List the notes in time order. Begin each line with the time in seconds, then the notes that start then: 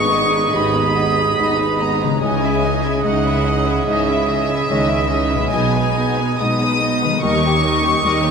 Already playing: G#1 G#2 D#3 G#3 B3 D#4 G#4 B4 D#5 C#6
0.12 B3 D#4 D#5
0.31 G#3 B3 D#4 B4
0.53 G#1 D#2 G#2 B3 D#4 D#5 B5
0.74 G#3 B3 D#4 B4
0.95 B3 D#4 D#5
1.16 G#3 B3 D#4 B4
1.37 G#1 G#2 G#3 B3 D#4 D#5
1.58 G#3 B3 D#4 B4
1.80 B3 D#4 D#5 A#5
2.01 C#3 G#3 B3 D#4 B4
2.07 G#3
2.12 C#4
2.16 C#5
2.21 C#2 C#3 E3 C#4 D#4 G#4 D#5 G#5
2.42 G#3 C#4 E4 E5
2.64 E3 C#4 D#4 D#5
2.84 G#3 C#4 E4 E5
3.04 C#2 C#3 E3 G#3 C#4 D#4 D#5 F#5
3.25 G#3 C#4 E4 E5
3.46 E3 C#4 D#4 D#5
3.66 G#3 C#4 E4 E5
3.86 C#2 G#2 C#3 E3 C#4 D#4 D#5 E5
4.07 G#3 C#4 E4 E5
4.28 E3 C#4 D#4 D#5
4.49 G#3 C#4 E4 E5
4.68 C#2 C#3 D#3 E3 G#3 C#4 D#4 C#5 D#5
4.88 G#3 C#4 E4 E5
5.09 E3 C#4 D#4 D#5
5.30 G#3 C#4 E4 E5
5.34 B2
5.39 G#3
5.44 B3
5.48 B3 D#5
5.52 B1 B2 B3 D#4 G#5
5.73 G#3 B3 D#4 B4
5.94 B3 D#4 D#5
6.18 G#3 B3 D#4 B4
6.38 B1 B2 G#3 B3 D#4 D#5 D#6
6.61 G#3 B3 D#4 B4
6.81 B3 D#4 D#5
7.02 D#3 G#3 B3 D#4 B4
7.09 G3
7.13 A#3
7.18 D#3 D#5
7.22 D#2 D#3 G3 D#4 G4 A#4 D#5 C#6
7.43 A#3 C#4 G4 C#5
7.63 G3 D#4 A#4 D#5
7.82 A#3 C#4 G4 C#5
8.02 D#2 D#3 G3 D#4 A#4 D#5
8.23 A#3 C#4 G4 C#5